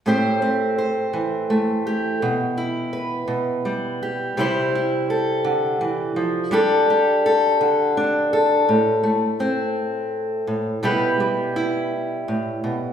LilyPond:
\new Staff \with { instrumentName = "Steel-string acoustic guitar" } { \time 6/8 \key a \minor \tempo 4. = 56 << { <a c' g' c''>8 c'8 c''4. g'8 | r8 e'8 b'4. g'8 | <g e' g' c''>8 e'8 a'2 | <d' g' a'>8 g'8 a'4. a'8~ |
a'4 c'2 | <g e' g' b'>4 e'2 | } \\ { a,4. e8 a4 | b,4. b,8 g4 | c4. d8 e8 f8 | g4. d8 d'4 |
a,8 a2 a,8 | b,8 g4. a,8 b,8 | } >> }